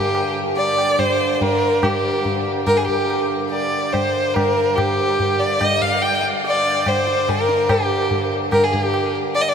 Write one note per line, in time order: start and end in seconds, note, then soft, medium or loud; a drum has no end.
0.00 7.69 G2 medium
0.00 7.69 D3 medium
0.00 0.36 G4 medium
0.15 tabla na medium
0.57 1.01 D5 medium
0.57 tabla tin medium
0.78 tabla na medium
0.99 1.34 C5 medium
0.99 tabla na medium
0.99 tabla ge medium
1.34 1.44 C5 medium
1.41 1.85 A#4 medium
1.41 tabla tin medium
1.41 tabla ge medium
1.83 2.47 G4 medium
1.83 tabla na medium
1.83 tabla ge medium
2.25 tabla tin medium
2.25 tabla ge medium
2.67 2.78 A#4 medium
2.67 tabla na medium
2.67 tabla ge medium
2.77 2.86 G#4 medium
2.87 3.27 G4 medium
2.87 tabla ge soft
3.10 tabla na medium
3.50 3.94 D5 medium
3.50 tabla tin medium
3.92 4.35 C5 medium
3.92 tabla na medium
3.92 tabla ge medium
4.34 4.77 A#4 medium
4.34 tabla na medium
4.34 tabla ge medium
4.57 tabla te medium
4.75 5.40 G4 medium
4.75 tabla na medium
4.75 tabla ge medium
5.20 tabla tin medium
5.20 tabla ge medium
5.39 5.61 D5 medium
5.60 5.83 D#5 medium
5.60 tabla na medium
5.60 tabla ge medium
5.82 6.04 F5 medium
5.82 tabla ge soft
6.02 6.23 G5 medium
6.02 tabla te medium
6.23 tabla te soft
6.44 6.89 D5 medium
6.44 tabla tin medium
6.86 7.30 C5 medium
6.86 tabla na medium
6.86 tabla ge medium
7.07 tabla te medium
7.29 7.71 A#4 medium
7.29 tabla na medium
7.29 tabla ge medium
7.49 tabla te medium
7.69 9.54 G2 medium
7.69 9.54 D3 medium
7.69 8.31 G4 medium
7.69 tabla na medium
7.69 tabla ge medium
8.11 tabla tin medium
8.11 tabla ge medium
8.52 8.65 A#4 loud
8.52 tabla na medium
8.52 tabla ge medium
8.63 8.72 G#4 medium
8.72 8.83 G#4 medium
8.72 tabla ge medium
8.83 9.14 G4 medium
8.94 tabla na medium
9.35 9.43 D5 loud
9.35 tabla tin medium
9.41 9.50 D#5 medium
9.48 9.54 D5 medium